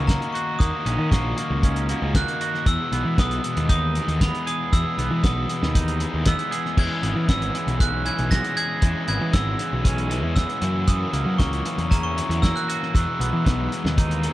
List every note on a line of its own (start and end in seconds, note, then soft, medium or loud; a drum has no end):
0.00 0.16 C#2 medium
0.00 0.85 C#4 medium
0.07 0.58 D#3 medium
0.07 0.59 A#3 medium
0.07 0.60 D#4 medium
0.07 0.60 F#4 medium
0.07 0.35 A#5 medium
0.07 kick loud
0.07 snare loud
0.07 closed hi-hat medium
0.22 closed hi-hat soft
0.33 1.64 F#4 medium
0.33 0.60 C#6 medium
0.33 closed hi-hat medium
0.59 0.71 D#2 loud
0.59 1.10 D#3 loud
0.59 0.85 A#3 loud
0.59 1.12 A#3 medium
0.59 0.86 D#4 loud
0.59 0.84 F#4 loud
0.59 1.13 D#6 loud
0.59 kick loud
0.59 closed hi-hat medium
0.85 0.96 A#1 medium
0.85 1.11 A#3 medium
0.85 1.63 C#4 medium
0.85 1.12 D#4 medium
0.85 1.12 F#4 medium
0.85 closed hi-hat medium
0.98 1.09 D#3 medium
1.12 1.33 A#1 medium
1.12 1.63 D#3 loud
1.12 1.38 A#3 medium
1.12 1.37 A#3 medium
1.12 1.37 D#4 loud
1.12 1.36 F#4 loud
1.12 1.60 C#6 medium
1.12 kick loud
1.12 snare loud
1.12 closed hi-hat medium
1.37 1.88 A#3 medium
1.37 1.89 A#3 medium
1.37 1.89 D#4 medium
1.37 1.88 F#4 medium
1.37 closed hi-hat medium
1.50 1.92 C#2 medium
1.63 2.67 C#4 medium
1.63 kick loud
1.63 closed hi-hat loud
1.76 closed hi-hat soft
1.89 2.14 A#3 medium
1.89 2.15 D#4 medium
1.89 2.15 F#4 medium
1.89 closed hi-hat medium
2.02 2.23 C#2 medium
2.14 2.65 D#3 medium
2.14 2.67 A#3 medium
2.14 2.65 A#3 medium
2.14 2.68 D#4 medium
2.14 2.66 F#4 medium
2.14 2.69 F#6 loud
2.14 kick loud
2.14 snare loud
2.14 closed hi-hat medium
2.28 closed hi-hat soft
2.41 2.67 F#4 medium
2.41 closed hi-hat medium
2.55 snare soft
2.66 2.77 E2 loud
2.66 3.17 E2 medium
2.66 3.17 B2 loud
2.66 2.94 E3 loud
2.66 2.93 G#3 medium
2.66 2.92 B3 loud
2.66 2.92 G#4 loud
2.66 3.20 E6 loud
2.66 kick loud
2.66 closed hi-hat loud
2.92 3.02 B1 medium
2.92 3.17 E3 medium
2.92 3.18 G#3 medium
2.92 3.18 B3 medium
2.92 3.18 G#4 medium
2.92 closed hi-hat medium
3.05 3.15 E3 medium
3.17 3.39 B1 medium
3.17 4.72 E2 loud
3.17 3.69 B2 medium
3.17 3.44 E3 medium
3.17 3.43 G#3 medium
3.17 4.21 B3 medium
3.17 3.43 B3 medium
3.17 3.42 G#4 loud
3.17 3.69 D#6 medium
3.17 kick loud
3.17 snare loud
3.17 closed hi-hat medium
3.31 closed hi-hat soft
3.43 3.96 E3 medium
3.43 3.96 G#3 medium
3.43 3.95 B3 medium
3.43 3.95 G#4 medium
3.43 closed hi-hat medium
3.57 3.98 D#2 medium
3.57 closed hi-hat soft
3.69 4.98 D#4 medium
3.69 4.23 D#6 loud
3.69 kick loud
3.69 closed hi-hat medium
3.95 4.20 E3 medium
3.95 4.21 G#3 medium
3.95 4.22 B3 medium
3.95 4.22 G#4 medium
3.95 closed hi-hat medium
4.08 4.29 D#2 medium
4.08 closed hi-hat soft
4.21 4.73 E3 medium
4.21 4.73 G#3 medium
4.21 4.98 B3 medium
4.21 4.73 B3 medium
4.21 4.74 G#4 medium
4.21 4.45 B5 medium
4.21 kick loud
4.21 snare loud
4.21 closed hi-hat medium
4.35 closed hi-hat soft
4.46 6.51 G#4 medium
4.46 4.73 D#6 medium
4.46 closed hi-hat medium
4.73 5.23 E2 medium
4.73 4.83 E2 loud
4.73 5.23 B2 medium
4.73 5.00 E3 loud
4.73 4.99 G#3 loud
4.73 4.98 B3 loud
4.73 4.98 G#4 loud
4.73 5.25 E6 loud
4.73 kick loud
4.73 closed hi-hat medium
4.98 5.08 B1 medium
4.98 5.24 E3 medium
4.98 5.24 G#3 medium
4.98 5.24 B3 medium
4.98 5.25 G#4 medium
4.98 closed hi-hat medium
5.11 5.21 E3 medium
5.23 5.44 B1 medium
5.23 8.73 E2 medium
5.23 5.75 B2 loud
5.23 5.50 E3 medium
5.23 5.50 G#3 loud
5.23 6.26 B3 medium
5.23 5.49 B3 loud
5.23 5.49 G#4 loud
5.23 5.71 D#6 medium
5.23 kick loud
5.23 snare loud
5.23 closed hi-hat medium
5.49 6.02 E3 medium
5.49 6.02 G#3 medium
5.49 6.01 B3 medium
5.49 6.01 G#4 medium
5.49 closed hi-hat medium
5.62 6.04 D#2 medium
5.62 snare medium
5.75 6.78 D#4 medium
5.75 kick loud
5.75 closed hi-hat loud
5.88 closed hi-hat soft
6.00 6.26 E3 medium
6.00 6.27 G#3 medium
6.00 6.27 B3 medium
6.00 6.28 G#4 medium
6.00 closed hi-hat medium
6.14 6.34 D#2 medium
6.26 6.77 E3 medium
6.26 6.77 G#3 medium
6.26 7.03 B3 medium
6.26 6.78 B3 medium
6.26 6.79 G#4 medium
6.26 6.80 E6 loud
6.26 kick loud
6.26 snare loud
6.26 closed hi-hat loud
6.39 closed hi-hat soft
6.51 8.57 G#4 medium
6.51 closed hi-hat medium
6.66 snare soft
6.77 6.88 E2 medium
6.77 7.55 E3 medium
6.77 7.28 E3 medium
6.77 7.05 G#3 medium
6.77 7.03 C#4 medium
6.77 7.02 G#4 loud
6.77 7.31 G#6 loud
6.77 kick loud
6.77 crash medium
7.03 7.13 G#1 medium
7.03 7.28 G#3 medium
7.03 7.28 B3 medium
7.03 7.29 C#4 medium
7.03 7.29 G#4 medium
7.03 closed hi-hat medium
7.15 7.26 E3 medium
7.28 7.49 G#1 medium
7.28 8.30 E3 medium
7.28 7.55 G#3 medium
7.28 8.30 B3 medium
7.28 7.54 C#4 loud
7.28 7.53 G#4 medium
7.28 7.82 E6 medium
7.28 kick loud
7.28 snare loud
7.28 closed hi-hat loud
7.42 closed hi-hat soft
7.54 8.04 E3 medium
7.54 8.06 G#3 medium
7.54 8.06 C#4 medium
7.54 8.04 G#4 medium
7.54 closed hi-hat medium
7.67 8.08 B1 medium
7.67 closed hi-hat soft
7.80 9.11 C#4 medium
7.80 8.07 F#6 medium
7.80 kick loud
7.80 closed hi-hat medium
8.05 8.82 E3 medium
8.05 8.30 G#3 medium
8.05 8.32 C#4 medium
8.05 8.32 G#4 medium
8.05 8.30 G#6 loud
8.05 closed hi-hat medium
8.19 8.39 B1 medium
8.19 closed hi-hat soft
8.31 8.81 E3 medium
8.31 8.81 G#3 medium
8.31 9.07 B3 medium
8.31 8.82 C#4 medium
8.31 8.82 G#4 medium
8.31 8.58 A#6 loud
8.31 kick loud
8.31 snare loud
8.31 closed hi-hat medium
8.44 closed hi-hat soft
8.57 9.86 G#4 medium
8.57 9.07 G#6 loud
8.57 closed hi-hat medium
8.81 8.93 E2 loud
8.81 9.32 E3 medium
8.81 9.59 E3 medium
8.81 9.08 G#3 medium
8.81 9.07 C#4 loud
8.81 9.06 G#4 loud
8.81 kick loud
8.81 closed hi-hat medium
9.07 9.19 G#1 medium
9.07 9.32 G#3 medium
9.07 9.32 B3 medium
9.07 9.33 C#4 medium
9.07 9.33 G#4 medium
9.07 9.35 G#6 loud
9.07 closed hi-hat medium
9.21 9.32 E3 loud
9.32 9.55 G#1 medium
9.32 10.34 E3 medium
9.32 9.59 G#3 medium
9.32 10.36 B3 medium
9.32 9.59 C#4 loud
9.32 9.57 G#4 loud
9.32 10.34 E6 medium
9.32 kick loud
9.32 snare loud
9.32 closed hi-hat medium
9.59 10.10 E3 medium
9.59 10.10 G#3 medium
9.59 10.09 C#4 medium
9.59 10.08 G#4 medium
9.59 closed hi-hat medium
9.73 10.23 B1 medium
9.84 10.62 C#4 medium
9.84 kick loud
9.84 closed hi-hat medium
9.98 closed hi-hat soft
10.10 10.62 E3 medium
10.10 10.35 G#3 medium
10.10 10.35 C#4 medium
10.10 10.36 G#4 medium
10.10 closed hi-hat medium
10.23 10.44 E2 medium
10.35 10.62 E3 medium
10.35 10.61 G#3 medium
10.35 10.63 B3 medium
10.35 10.61 C#4 medium
10.35 10.61 G#4 medium
10.35 10.84 E6 loud
10.35 kick loud
10.35 snare loud
10.35 closed hi-hat loud
10.49 closed hi-hat soft
10.61 11.04 F#2 loud
10.61 10.86 F#2 medium
10.61 10.86 C#3 medium
10.61 10.87 E3 medium
10.61 10.87 A#3 medium
10.61 10.87 C#4 medium
10.61 10.87 F#4 medium
10.61 closed hi-hat medium
10.87 11.37 F#2 medium
10.87 11.37 C#3 medium
10.87 11.15 E3 loud
10.87 11.64 E3 medium
10.87 11.13 A#3 medium
10.87 11.12 C#4 loud
10.87 11.11 F#4 loud
10.87 11.36 D#6 medium
10.87 kick loud
10.87 closed hi-hat loud
11.13 11.24 C#2 medium
11.13 11.39 E3 medium
11.13 11.38 A#3 medium
11.13 11.39 C#4 medium
11.13 11.39 F#4 medium
11.13 closed hi-hat medium
11.26 11.37 F#3 loud
11.38 11.60 C#2 medium
11.38 11.91 F#2 medium
11.38 11.91 C#3 loud
11.38 11.67 E3 loud
11.38 12.42 A#3 medium
11.38 11.65 A#3 loud
11.38 11.64 C#4 medium
11.38 11.64 F#4 loud
11.38 11.87 C#6 medium
11.38 kick loud
11.38 snare loud
11.38 closed hi-hat medium
11.53 closed hi-hat soft
11.65 12.15 E3 medium
11.65 12.17 E3 medium
11.65 12.17 A#3 medium
11.65 12.16 C#4 medium
11.65 12.16 F#4 medium
11.65 closed hi-hat medium
11.78 12.20 E2 medium
11.78 closed hi-hat soft
11.91 12.94 C#4 medium
11.91 12.03 A#5 medium
11.91 kick loud
11.91 closed hi-hat loud
12.03 12.44 C#6 medium
12.16 12.94 E3 medium
12.16 12.41 E3 medium
12.16 12.42 A#3 medium
12.16 12.43 C#4 medium
12.16 12.43 F#4 medium
12.16 closed hi-hat medium
12.29 12.50 E2 medium
12.29 closed hi-hat soft
12.42 12.93 E3 medium
12.42 12.93 A#3 medium
12.42 12.95 A#3 medium
12.42 12.94 C#4 medium
12.42 12.94 F#4 medium
12.42 12.56 E6 loud
12.42 kick loud
12.42 snare loud
12.42 closed hi-hat medium
12.56 12.96 F#6 medium
12.56 closed hi-hat soft
12.68 12.94 F#4 medium
12.68 closed hi-hat medium
12.83 snare soft
12.94 13.44 E2 loud
12.94 13.05 E2 loud
12.94 13.45 B2 medium
12.94 13.21 E3 loud
12.94 13.20 G#3 medium
12.94 13.20 B3 loud
12.94 13.19 G#4 loud
12.94 14.33 E6 medium
12.94 kick loud
12.94 closed hi-hat medium
13.20 13.31 B1 medium
13.20 13.45 E3 medium
13.20 13.45 G#3 medium
13.20 13.44 B3 medium
13.20 13.45 B3 medium
13.20 13.46 G#4 medium
13.20 closed hi-hat medium
13.33 13.43 E3 medium
13.45 13.67 B1 medium
13.45 13.97 E2 medium
13.45 13.98 B2 medium
13.45 13.73 E3 medium
13.45 13.72 G#3 loud
13.45 14.33 B3 medium
13.45 13.72 B3 medium
13.45 13.70 G#4 medium
13.45 kick loud
13.45 snare loud
13.45 closed hi-hat medium
13.72 14.24 E3 medium
13.72 14.24 G#3 medium
13.72 14.23 B3 medium
13.72 14.23 G#4 medium
13.72 closed hi-hat medium
13.85 14.27 D#2 medium
13.85 snare medium
13.98 14.33 D#4 medium
13.98 kick loud
13.98 closed hi-hat loud
14.11 closed hi-hat soft
14.23 14.33 E3 medium
14.23 14.33 G#3 medium
14.23 14.33 B3 medium
14.23 14.33 G#4 medium
14.23 closed hi-hat medium